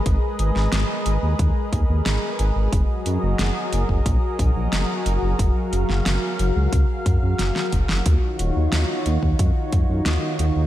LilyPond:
<<
  \new Staff \with { instrumentName = "Analog synth pad" } { \time 4/4 \key ges \major \tempo 4 = 90 << { ees''1 | ees''1 | f''1 | <f' des''>1 | } \\ { <aes aes' bes' ces''>1 | <ges ges' bes'>1~ | <ges ges' bes'>1 | <ees ees'>1 | } >> }
  \new Staff \with { instrumentName = "Detuned saw bass" } { \clef bass \time 4/4 \key ges \major aes,,16 r16 aes,,16 aes,,16 aes,,16 r16 aes,,16 ees,16 ees,16 r16 ees,16 ees,16 aes,,16 r16 aes,,16 aes,,16 | ges,,16 r16 ges,16 ges,,16 ges,,16 r16 ges,,16 ges,,16 bes,,16 r16 bes,,16 bes,,16 ges,,16 r16 ges,,16 ges,,16 | ges,,16 r16 ges,,16 ges,,16 ges,,16 r16 ges,,16 des,16 des,16 r16 ges,16 ges,16 ges,,16 r16 ges,,16 ges,,16 | ees,16 r16 ees,,16 ees,16 ees,16 r16 ees,16 ees,16 ges,16 r16 ges,16 ges,16 ees,16 r16 ees,16 ees,16 | }
  \new DrumStaff \with { instrumentName = "Drums" } \drummode { \time 4/4 <hh bd>8 hh16 sn16 <hh sn>8 hh8 <hh bd>8 <hh bd>8 <hh sn>8 hh8 | <hh bd>8 hh8 <hh sn>8 hh16 bd16 <hh bd>8 <hh bd>8 <hh sn>8 hh8 | <hh bd>8 hh16 sn16 <hh sn>8 hh8 <hh bd>8 <hh bd>8 <hh sn>16 sn16 <hh bd>16 sn16 | <hh bd>8 hh8 <hh sn>8 hh16 bd16 <hh bd>8 <hh bd>8 <hh sn>8 hh8 | }
>>